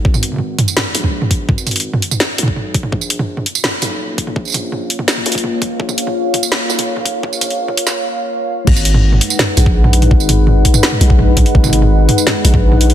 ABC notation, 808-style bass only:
X:1
M:4/4
L:1/16
Q:1/4=167
K:G#dor
V:1 name="808-style bass" clef=bass
G,,,6 z4 A,,,6 | G,,,6 z4 B,,,6 | A,,,6 z4 B,,,6 | A,,,6 z4 C,,6 |
A,,,6 z4 B,,,6 | A,,,6 z8 z2 | G,,,6 z4 A,,,6 | G,,,6 z4 B,,,2 A,,,2 A,,, z |
G,,,6 z4 A,,,6 |]